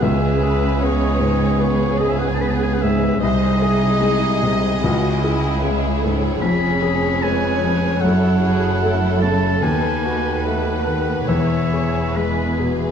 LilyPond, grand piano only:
\new Staff \with { instrumentName = "Grand piano" } { \clef bass \time 4/4 \key cis \minor \tempo 4 = 74 cis,8 gis'8 b8 gis,8 b8 gis'8 b8 gis,8 | bis,,8 gis'8 gis8 bis,8 cis,8 gis'8 gis8 gis,8 | eis,8 gis'8 gis8 eis8 fis,8 fis'8 a8 cis8 | dis,8 fis'8 a8 dis8 e,8 gis'8 gis8 b,8 | }